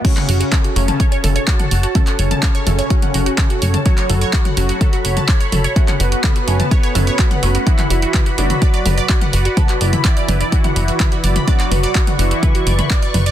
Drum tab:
CC |x---------------|----------------|----------------|----------------|
HH |xxoxxxoxxxoxoxox|xxoxxxoxxxoxxxox|xxoxxxoxxxoxoxox|xxoxxxoxxxoxxxox|
CP |-x--x-------x---|-x--x-------x---|-x--x-------x---|-x--x-------x---|
T2 |-o--o--o--o--o--|o--o--o--o--o--o|--o--o--o--o--o-|-o--o--o--o--o--|
BD |o---o---o---o---|o---o---o---o---|o---o---o---o---|o---o---o---o---|

CC |----------------|----------------|----------------|
HH |xxoxxxoxxxoxoxox|xxoxxxoxxxoxxxox|xxoxxxoxxxoxoxox|
CP |-x--x-------x---|-x--x-------x---|-x--x-------x---|
T2 |-o--o--o--o--o--|o--o--o--o--o--o|--o--o--o--o--o-|
BD |o---o---o---o---|o---o---o---o---|o---o---o---o---|